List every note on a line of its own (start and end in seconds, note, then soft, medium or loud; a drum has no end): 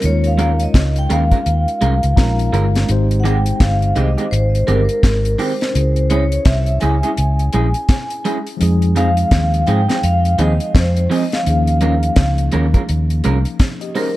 0.00 0.66 D#2 loud
0.00 0.09 G3 soft
0.00 2.13 C#4 medium
0.00 2.13 D#4 medium
0.00 closed hi-hat loud
0.05 2.14 G#3 medium
0.05 2.14 F4 medium
0.05 2.15 A#4 medium
0.05 0.26 C#5 loud
0.24 0.59 F5 medium
0.24 closed hi-hat soft
0.38 0.51 G#3 medium
0.38 0.51 C#4 medium
0.38 0.51 F4 medium
0.38 0.51 A#4 loud
0.38 closed hi-hat medium
0.60 0.95 D#5 medium
0.60 closed hi-hat medium
0.74 1.06 C#2 loud
0.74 kick loud
0.74 snare loud
0.74 closed hi-hat loud
0.96 1.12 G5 loud
0.96 closed hi-hat medium
1.10 1.29 D#2 medium
1.10 1.22 G#3 medium
1.10 1.23 C#4 medium
1.10 1.23 F4 medium
1.10 1.23 A#4 medium
1.10 2.50 F5 medium
1.10 closed hi-hat medium
1.31 1.39 G#3 medium
1.31 1.39 C#4 medium
1.31 1.38 F4 medium
1.31 1.38 A#4 medium
1.31 kick medium
1.31 closed hi-hat medium
1.46 1.65 D#2 medium
1.46 closed hi-hat medium
1.68 closed hi-hat medium
1.81 2.01 C2 loud
1.81 1.94 G#3 medium
1.81 1.94 C#4 medium
1.81 1.94 F4 loud
1.81 1.94 A#4 loud
1.81 closed hi-hat medium
2.03 2.16 C#2 medium
2.03 closed hi-hat medium
2.15 2.49 A#1 medium
2.15 2.84 G#3 medium
2.15 2.88 C#4 medium
2.15 2.87 D#4 medium
2.15 2.89 F4 medium
2.15 2.89 A#4 medium
2.15 2.50 A#5 medium
2.15 kick loud
2.15 snare loud
2.15 closed hi-hat loud
2.39 closed hi-hat medium
2.53 2.84 G1 loud
2.53 2.65 G#3 medium
2.53 2.65 C#4 medium
2.53 2.66 F4 medium
2.53 2.66 A#4 loud
2.53 2.86 F5 medium
2.53 closed hi-hat medium
2.75 snare medium
2.75 closed hi-hat medium
2.86 3.51 G#1 loud
2.86 5.69 G#3 medium
2.86 5.70 C4 medium
2.86 5.70 D#4 medium
2.86 closed hi-hat medium
2.90 5.71 G4 medium
2.90 5.72 C5 medium
3.11 closed hi-hat medium
3.20 3.37 D#3 medium
3.20 3.25 F#5 medium
3.24 3.37 G#3 medium
3.24 3.37 C4 medium
3.24 3.37 G4 medium
3.24 3.62 G5 medium
3.24 closed hi-hat medium
3.46 closed hi-hat medium
3.60 3.92 G1 loud
3.60 3.97 F5 medium
3.60 kick loud
3.60 snare loud
3.60 closed hi-hat medium
3.82 closed hi-hat medium
3.96 4.15 C2 loud
3.96 4.08 D#3 medium
3.96 4.08 G#3 medium
3.96 4.09 C4 medium
3.96 4.09 G4 medium
3.96 4.32 D#5 medium
3.96 closed hi-hat medium
4.18 4.24 D#3 medium
4.18 4.24 G#3 medium
4.18 4.24 C4 medium
4.18 4.24 G4 medium
4.18 closed hi-hat medium
4.31 4.63 G#1 medium
4.31 4.68 C5 medium
4.31 closed hi-hat medium
4.55 closed hi-hat medium
4.67 4.86 G1 loud
4.67 4.80 D#3 medium
4.67 4.80 G#3 medium
4.67 4.80 C4 loud
4.67 4.80 G4 loud
4.67 5.41 A#4 medium
4.67 closed hi-hat medium
4.89 closed hi-hat medium
5.03 5.34 G#1 medium
5.03 kick loud
5.03 snare loud
5.03 closed hi-hat loud
5.25 closed hi-hat medium
5.38 5.51 D#3 medium
5.38 5.51 G#3 medium
5.38 5.52 C4 medium
5.38 5.52 G4 medium
5.38 6.12 C5 loud
5.38 open hi-hat medium
5.61 snare medium
5.61 closed hi-hat medium
5.71 8.54 C#4 medium
5.71 8.56 E4 medium
5.75 6.37 C#2 loud
5.75 8.57 G#4 medium
5.75 closed hi-hat loud
5.96 closed hi-hat soft
6.10 6.23 G#3 medium
6.10 6.23 C#4 medium
6.10 6.23 E4 medium
6.10 6.23 G#4 medium
6.10 6.47 C#5 medium
6.10 closed hi-hat medium
6.32 closed hi-hat medium
6.45 6.77 C2 loud
6.45 6.82 E5 loud
6.45 kick loud
6.45 snare loud
6.45 closed hi-hat loud
6.66 closed hi-hat medium
6.80 7.01 C#2 medium
6.80 6.94 G#3 medium
6.80 6.94 C#4 medium
6.80 6.95 E4 loud
6.80 6.95 G#4 medium
6.80 8.20 G#5 loud
6.80 closed hi-hat medium
7.03 7.10 G#3 medium
7.03 7.10 C#4 medium
7.03 7.10 E4 medium
7.03 7.10 G#4 medium
7.03 closed hi-hat medium
7.17 7.49 C#2 loud
7.17 closed hi-hat medium
7.39 closed hi-hat medium
7.53 7.72 A#1 loud
7.53 7.66 G#3 medium
7.53 7.66 C#4 medium
7.53 7.66 E4 medium
7.53 7.66 G#4 loud
7.53 closed hi-hat medium
7.74 closed hi-hat medium
7.89 kick loud
7.89 snare loud
7.89 closed hi-hat medium
8.10 closed hi-hat medium
8.25 8.37 G#3 medium
8.25 8.37 C#4 medium
8.25 8.38 E4 loud
8.25 8.38 G#4 loud
8.25 closed hi-hat medium
8.47 closed hi-hat medium
8.57 11.40 F3 medium
8.57 11.41 G#3 medium
8.57 11.42 C4 medium
8.57 closed hi-hat loud
8.61 9.23 F2 loud
8.61 11.42 D#4 medium
8.61 11.43 G#4 medium
8.82 closed hi-hat medium
8.96 9.08 F3 medium
8.96 9.09 C4 medium
8.96 9.09 D#4 medium
8.96 9.09 G#4 medium
8.96 9.70 F5 loud
8.96 closed hi-hat medium
9.17 closed hi-hat medium
9.31 9.63 D#2 loud
9.31 kick loud
9.31 snare loud
9.31 closed hi-hat loud
9.54 closed hi-hat medium
9.67 9.86 G#2 loud
9.67 9.80 F3 medium
9.67 9.80 C4 medium
9.67 9.81 D#4 medium
9.67 9.80 G#4 loud
9.67 10.04 G5 loud
9.67 closed hi-hat medium
9.89 9.96 F3 medium
9.89 9.96 C4 medium
9.89 9.95 D#4 medium
9.89 9.95 G#4 medium
9.89 snare medium
9.89 closed hi-hat medium
10.03 10.34 F2 medium
10.03 10.36 F5 loud
10.03 closed hi-hat medium
10.25 closed hi-hat medium
10.38 10.58 D#2 loud
10.38 10.51 F3 medium
10.38 10.51 C4 medium
10.38 10.51 D#4 loud
10.38 10.52 G#4 medium
10.38 10.76 D#5 medium
10.38 closed hi-hat medium
10.60 closed hi-hat medium
10.75 11.06 F2 loud
10.75 11.12 C5 medium
10.75 kick loud
10.75 snare loud
10.75 closed hi-hat medium
10.97 closed hi-hat medium
11.10 11.23 F3 loud
11.10 11.23 C4 loud
11.10 11.23 D#4 loud
11.10 11.23 G#4 medium
11.10 11.33 D#5 medium
11.10 open hi-hat medium
11.32 12.36 F5 medium
11.32 snare medium
11.32 closed hi-hat medium
11.43 14.17 F3 medium
11.43 14.17 A#3 medium
11.43 13.57 C#4 medium
11.43 closed hi-hat loud
11.47 12.09 D#2 loud
11.47 13.57 D#4 medium
11.47 13.58 G#4 medium
11.67 closed hi-hat medium
11.81 11.94 G#3 medium
11.81 11.94 C#4 medium
11.81 11.94 F4 medium
11.81 11.94 A#4 medium
11.81 closed hi-hat medium
12.03 closed hi-hat medium
12.16 12.48 C#2 loud
12.16 kick loud
12.16 snare loud
12.16 closed hi-hat loud
12.38 closed hi-hat medium
12.52 12.72 D#2 loud
12.52 12.65 G#3 loud
12.52 12.65 C#4 loud
12.52 12.66 F4 medium
12.52 12.66 A#4 loud
12.52 closed hi-hat medium
12.74 12.81 G#3 medium
12.74 12.81 C#4 medium
12.74 12.81 F4 medium
12.74 12.81 A#4 medium
12.74 kick medium
12.74 closed hi-hat medium
12.89 13.20 D#2 medium
12.89 closed hi-hat medium
13.10 closed hi-hat medium
13.24 13.44 C2 loud
13.24 13.37 G#3 medium
13.24 13.37 C#4 medium
13.24 13.37 F4 medium
13.24 13.37 A#4 medium
13.24 closed hi-hat medium
13.45 closed hi-hat medium
13.60 kick loud
13.60 snare loud
13.60 closed hi-hat medium
13.81 13.95 G4 medium
13.81 13.95 D#5 medium
13.81 closed hi-hat medium
13.95 14.08 G#3 medium
13.95 14.08 C#4 medium
13.95 14.16 D#4 medium
13.95 14.08 F4 medium
13.95 14.09 A#4 medium
13.95 14.17 A#4 medium
13.95 14.16 C5 medium
13.95 open hi-hat medium